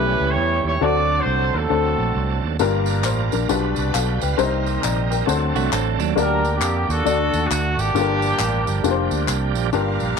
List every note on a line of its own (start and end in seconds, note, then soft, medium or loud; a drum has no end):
0.00 0.15 B1 medium
0.00 0.77 E3 medium
0.00 0.78 G3 medium
0.00 0.52 A3 medium
0.00 0.77 A3 medium
0.00 0.24 C#4 medium
0.00 0.52 C#4 medium
0.00 0.78 C#4 medium
0.00 0.28 E4 medium
0.00 0.52 E4 medium
0.00 0.28 G4 medium
0.00 0.52 G4 medium
0.00 0.78 G4 medium
0.00 0.28 B4 loud
0.00 0.52 B4 medium
0.20 0.34 C#2 medium
0.29 0.78 E4 medium
0.29 0.78 G4 medium
0.29 0.63 C#5 loud
0.36 0.60 E2 loud
0.64 0.78 D#2 medium
0.64 0.80 C#5 loud
0.81 1.19 D2 loud
0.81 1.50 D3 medium
0.81 2.57 F#3 medium
0.81 1.41 A3 medium
0.81 2.57 A3 medium
0.81 1.41 C4 medium
0.81 2.57 C4 medium
0.81 1.41 D4 medium
0.81 2.57 D4 medium
0.81 1.41 F#4 medium
0.81 1.19 F#4 medium
0.81 2.57 A4 medium
0.81 1.41 A4 loud
0.81 1.18 A4 medium
0.81 1.18 D5 loud
1.20 1.54 F#4 medium
1.20 1.55 A4 medium
1.20 1.55 C5 loud
1.26 1.50 C2 loud
1.54 1.68 D#2 loud
1.54 2.40 C4 medium
1.54 2.40 F#4 medium
1.54 2.44 A4 loud
1.69 1.94 D2 medium
1.69 2.29 A3 medium
1.69 2.30 C4 medium
1.69 2.30 D4 medium
1.69 2.30 F#4 medium
1.69 2.30 A4 medium
1.98 2.13 A#1 medium
2.15 2.39 C2 loud
2.43 2.57 D#2 medium
2.59 3.05 G1 loud
2.59 3.28 G2 medium
2.59 3.49 G3 medium
2.59 3.19 A#3 loud
2.59 3.48 A#3 medium
2.59 3.05 D4 medium
2.59 3.48 D4 medium
2.59 3.05 F4 loud
2.59 3.49 F4 medium
2.59 3.05 G4 medium
2.59 3.05 A#4 loud
2.59 3.48 A#4 medium
2.59 tambourine medium
2.86 tambourine medium
3.04 3.28 A1 medium
3.04 3.31 C5 medium
3.04 clap medium
3.04 tambourine medium
3.32 3.47 A#1 medium
3.32 3.48 D4 medium
3.32 3.75 A#4 medium
3.32 tambourine medium
3.49 3.73 B1 loud
3.49 4.18 B2 medium
3.49 4.37 G3 medium
3.49 4.08 B3 medium
3.49 4.37 B3 medium
3.49 4.09 D4 medium
3.49 4.37 D4 medium
3.49 4.09 F4 medium
3.49 4.37 F4 medium
3.49 4.09 G4 medium
3.49 3.94 B4 medium
3.49 4.37 B4 medium
3.49 tambourine medium
3.76 3.92 C2 medium
3.76 3.94 D5 medium
3.76 tambourine medium
3.94 4.18 B1 loud
3.94 4.21 A4 medium
3.94 4.20 F5 medium
3.94 4.21 G5 medium
3.94 clap medium
3.94 tambourine loud
4.21 4.36 C#2 medium
4.21 4.64 B4 medium
4.21 4.65 F5 medium
4.21 4.64 G5 medium
4.21 tambourine medium
4.37 4.76 C2 loud
4.37 5.07 C3 medium
4.37 5.26 G3 medium
4.37 5.25 A#3 medium
4.37 5.25 C4 medium
4.37 4.97 C4 loud
4.37 4.45 D4 medium
4.37 5.26 D#4 medium
4.37 4.98 G4 medium
4.37 5.26 A#4 loud
4.37 4.83 A#4 medium
4.37 4.83 C5 loud
4.37 tambourine medium
4.43 5.01 D#4 loud
4.66 tambourine soft
4.83 5.22 A#1 medium
4.83 5.10 D5 medium
4.83 5.09 A#5 medium
4.83 clap loud
4.83 tambourine loud
5.11 5.54 A#4 medium
5.11 5.53 G5 medium
5.11 tambourine medium
5.25 5.51 D2 loud
5.25 5.96 D3 medium
5.25 6.14 F#3 medium
5.25 6.14 A3 medium
5.25 6.14 C4 medium
5.25 5.87 C4 medium
5.25 6.14 D4 medium
5.25 5.87 D4 medium
5.25 5.87 F#4 medium
5.25 6.14 A4 loud
5.25 5.87 A4 medium
5.25 5.87 C5 loud
5.25 tambourine medium
5.55 5.70 C2 medium
5.55 5.72 A3 medium
5.55 5.72 F#4 medium
5.55 tambourine medium
5.72 5.96 A1 loud
5.72 5.99 C4 medium
5.72 5.99 A4 medium
5.72 clap loud
5.72 tambourine medium
5.99 6.14 D#2 medium
5.99 6.43 F#3 medium
5.99 6.42 D4 medium
5.99 tambourine medium
6.16 6.61 D2 loud
6.16 6.85 D3 medium
6.16 6.76 A#3 medium
6.16 7.05 A#3 medium
6.16 6.76 D4 medium
6.16 7.04 D4 medium
6.16 6.54 D4 medium
6.16 6.76 G4 medium
6.16 7.05 G4 medium
6.16 6.55 G4 medium
6.16 6.76 A#4 medium
6.16 6.77 D5 loud
6.16 tambourine medium
6.20 6.52 A#4 loud
6.45 tambourine medium
6.55 7.03 A#3 medium
6.55 6.88 D4 medium
6.55 6.91 G4 medium
6.61 6.84 F2 medium
6.61 clap loud
6.61 tambourine medium
6.89 7.03 D#2 medium
6.89 7.41 D4 medium
6.89 7.42 F#4 medium
6.89 7.43 A4 loud
6.89 tambourine medium
7.05 7.29 D2 loud
7.05 7.74 D3 medium
7.05 7.65 A3 medium
7.05 7.93 A3 medium
7.05 7.93 D4 medium
7.05 7.65 D4 medium
7.05 7.65 F#4 medium
7.05 7.93 F#4 medium
7.05 7.66 A4 medium
7.05 7.66 D5 medium
7.05 tambourine medium
7.33 7.48 D#2 medium
7.33 tambourine medium
7.43 7.92 A3 medium
7.43 7.76 D4 medium
7.43 7.79 F#4 loud
7.51 7.74 D2 loud
7.51 clap loud
7.51 tambourine loud
7.77 7.92 G#1 medium
7.77 9.25 A#3 medium
7.77 9.25 D4 medium
7.77 9.28 G4 loud
7.77 tambourine medium
7.94 8.32 G1 loud
7.94 8.63 G2 medium
7.94 9.70 F3 medium
7.94 9.70 G3 medium
7.94 8.54 A#3 medium
7.94 9.70 A#3 medium
7.94 8.55 D4 medium
7.94 9.70 D4 medium
7.94 8.55 F4 medium
7.94 9.70 G4 medium
7.94 8.55 G4 medium
7.94 8.02 A4 medium
7.94 tambourine medium
8.01 8.58 A#4 medium
8.22 tambourine medium
8.39 8.63 A1 loud
8.39 clap loud
8.39 tambourine medium
8.67 8.82 G1 medium
8.67 tambourine medium
8.84 9.08 F1 medium
8.84 9.44 A#3 medium
8.84 9.44 D4 medium
8.84 9.44 F4 medium
8.84 9.44 G4 medium
8.84 8.91 A#4 medium
8.84 tambourine medium
8.91 9.47 C5 medium
9.11 9.26 D2 medium
9.11 tambourine medium
9.28 9.56 C2 medium
9.28 clap loud
9.28 tambourine loud
9.55 9.70 A#1 medium
9.55 tambourine medium
9.73 9.97 G1 medium
9.73 10.20 G2 medium
9.73 10.20 G3 medium
9.73 10.20 A#3 soft
9.73 10.20 D4 medium
9.73 10.20 F4 medium
9.73 10.20 G4 medium
9.73 10.20 A#4 loud
9.73 10.20 F5 medium
9.73 10.20 G5 medium
9.73 10.20 D6 medium
9.73 tambourine medium
10.00 10.15 A#1 medium
10.00 tambourine soft